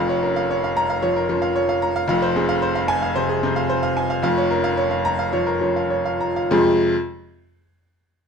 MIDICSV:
0, 0, Header, 1, 2, 480
1, 0, Start_track
1, 0, Key_signature, -4, "minor"
1, 0, Tempo, 535714
1, 1878, Time_signature, 4, 2, 24, 8
1, 4774, Tempo, 580833
1, 7213, End_track
2, 0, Start_track
2, 0, Title_t, "Grand piano"
2, 0, Program_c, 0, 0
2, 0, Note_on_c, 0, 29, 95
2, 0, Note_on_c, 0, 41, 101
2, 0, Note_on_c, 0, 77, 84
2, 84, Note_on_c, 0, 73, 85
2, 141, Control_c, 0, 64, 127
2, 161, Note_off_c, 0, 77, 0
2, 204, Note_on_c, 0, 70, 76
2, 205, Note_on_c, 0, 61, 78
2, 283, Note_off_c, 0, 73, 0
2, 325, Note_on_c, 0, 77, 90
2, 403, Note_off_c, 0, 61, 0
2, 403, Note_off_c, 0, 70, 0
2, 453, Note_on_c, 0, 73, 90
2, 522, Note_off_c, 0, 77, 0
2, 573, Note_on_c, 0, 77, 82
2, 645, Note_off_c, 0, 73, 0
2, 686, Note_on_c, 0, 82, 124
2, 764, Note_off_c, 0, 77, 0
2, 804, Note_on_c, 0, 77, 86
2, 878, Note_off_c, 0, 82, 0
2, 889, Note_off_c, 0, 29, 0
2, 895, Note_off_c, 0, 41, 0
2, 917, Note_on_c, 0, 73, 95
2, 921, Note_on_c, 0, 53, 81
2, 995, Note_off_c, 0, 77, 0
2, 1042, Note_on_c, 0, 70, 90
2, 1110, Note_off_c, 0, 73, 0
2, 1112, Note_off_c, 0, 53, 0
2, 1157, Note_on_c, 0, 53, 92
2, 1160, Note_on_c, 0, 61, 82
2, 1230, Note_off_c, 0, 70, 0
2, 1270, Note_on_c, 0, 77, 90
2, 1347, Note_off_c, 0, 53, 0
2, 1348, Note_off_c, 0, 61, 0
2, 1394, Note_on_c, 0, 73, 92
2, 1464, Note_off_c, 0, 77, 0
2, 1514, Note_on_c, 0, 77, 92
2, 1587, Note_off_c, 0, 73, 0
2, 1632, Note_on_c, 0, 82, 103
2, 1708, Note_off_c, 0, 77, 0
2, 1754, Note_on_c, 0, 77, 94
2, 1828, Note_off_c, 0, 82, 0
2, 1858, Note_off_c, 0, 77, 0
2, 1861, Note_on_c, 0, 29, 107
2, 1872, Note_on_c, 0, 77, 102
2, 1873, Note_on_c, 0, 41, 112
2, 1895, Control_c, 0, 64, 0
2, 1991, Note_on_c, 0, 72, 95
2, 2038, Control_c, 0, 64, 127
2, 2067, Note_off_c, 0, 77, 0
2, 2116, Note_on_c, 0, 60, 88
2, 2116, Note_on_c, 0, 68, 91
2, 2186, Note_off_c, 0, 72, 0
2, 2229, Note_on_c, 0, 77, 100
2, 2308, Note_off_c, 0, 60, 0
2, 2308, Note_off_c, 0, 68, 0
2, 2348, Note_on_c, 0, 72, 94
2, 2425, Note_off_c, 0, 77, 0
2, 2468, Note_on_c, 0, 77, 94
2, 2544, Note_off_c, 0, 72, 0
2, 2583, Note_on_c, 0, 80, 127
2, 2664, Note_off_c, 0, 77, 0
2, 2707, Note_on_c, 0, 77, 94
2, 2781, Note_off_c, 0, 80, 0
2, 2798, Note_off_c, 0, 29, 0
2, 2804, Note_off_c, 0, 41, 0
2, 2827, Note_on_c, 0, 72, 104
2, 2828, Note_on_c, 0, 48, 87
2, 2902, Note_off_c, 0, 77, 0
2, 2951, Note_on_c, 0, 68, 94
2, 3022, Note_off_c, 0, 72, 0
2, 3023, Note_off_c, 0, 48, 0
2, 3074, Note_on_c, 0, 60, 88
2, 3075, Note_on_c, 0, 48, 92
2, 3144, Note_off_c, 0, 68, 0
2, 3191, Note_on_c, 0, 77, 92
2, 3266, Note_off_c, 0, 60, 0
2, 3267, Note_off_c, 0, 48, 0
2, 3311, Note_on_c, 0, 72, 93
2, 3385, Note_off_c, 0, 77, 0
2, 3430, Note_on_c, 0, 77, 96
2, 3506, Note_off_c, 0, 72, 0
2, 3554, Note_on_c, 0, 80, 96
2, 3626, Note_off_c, 0, 77, 0
2, 3673, Note_on_c, 0, 77, 97
2, 3749, Note_off_c, 0, 80, 0
2, 3780, Note_off_c, 0, 77, 0
2, 3786, Note_on_c, 0, 29, 100
2, 3794, Note_on_c, 0, 77, 99
2, 3796, Note_on_c, 0, 41, 106
2, 3813, Control_c, 0, 64, 0
2, 3920, Note_on_c, 0, 73, 90
2, 3966, Control_c, 0, 64, 127
2, 3989, Note_off_c, 0, 77, 0
2, 4038, Note_on_c, 0, 70, 90
2, 4039, Note_on_c, 0, 61, 86
2, 4113, Note_off_c, 0, 73, 0
2, 4157, Note_on_c, 0, 77, 97
2, 4233, Note_off_c, 0, 61, 0
2, 4233, Note_off_c, 0, 70, 0
2, 4277, Note_on_c, 0, 73, 92
2, 4353, Note_off_c, 0, 77, 0
2, 4397, Note_on_c, 0, 77, 86
2, 4475, Note_off_c, 0, 73, 0
2, 4524, Note_on_c, 0, 82, 126
2, 4597, Note_off_c, 0, 77, 0
2, 4649, Note_on_c, 0, 77, 89
2, 4724, Note_off_c, 0, 82, 0
2, 4739, Note_off_c, 0, 29, 0
2, 4744, Note_off_c, 0, 41, 0
2, 4772, Note_on_c, 0, 73, 89
2, 4776, Note_on_c, 0, 53, 83
2, 4844, Note_off_c, 0, 77, 0
2, 4888, Note_on_c, 0, 70, 84
2, 4960, Note_off_c, 0, 73, 0
2, 4962, Note_off_c, 0, 53, 0
2, 5005, Note_on_c, 0, 61, 76
2, 5007, Note_on_c, 0, 53, 75
2, 5078, Note_off_c, 0, 70, 0
2, 5133, Note_on_c, 0, 77, 74
2, 5198, Note_off_c, 0, 61, 0
2, 5199, Note_off_c, 0, 53, 0
2, 5250, Note_on_c, 0, 73, 77
2, 5325, Note_off_c, 0, 77, 0
2, 5375, Note_on_c, 0, 77, 78
2, 5448, Note_off_c, 0, 73, 0
2, 5499, Note_on_c, 0, 82, 86
2, 5577, Note_off_c, 0, 77, 0
2, 5629, Note_on_c, 0, 77, 77
2, 5700, Note_off_c, 0, 82, 0
2, 5749, Note_on_c, 0, 41, 115
2, 5750, Note_off_c, 0, 77, 0
2, 5750, Note_on_c, 0, 48, 99
2, 5755, Note_on_c, 0, 56, 100
2, 5756, Note_on_c, 0, 60, 93
2, 5757, Note_on_c, 0, 65, 92
2, 5760, Note_on_c, 0, 68, 93
2, 5764, Control_c, 0, 64, 0
2, 5889, Control_c, 0, 64, 127
2, 6017, Note_off_c, 0, 41, 0
2, 6017, Note_off_c, 0, 48, 0
2, 6020, Note_off_c, 0, 56, 0
2, 6020, Note_off_c, 0, 60, 0
2, 6021, Note_off_c, 0, 65, 0
2, 6023, Note_off_c, 0, 68, 0
2, 6102, Control_c, 0, 64, 0
2, 7213, End_track
0, 0, End_of_file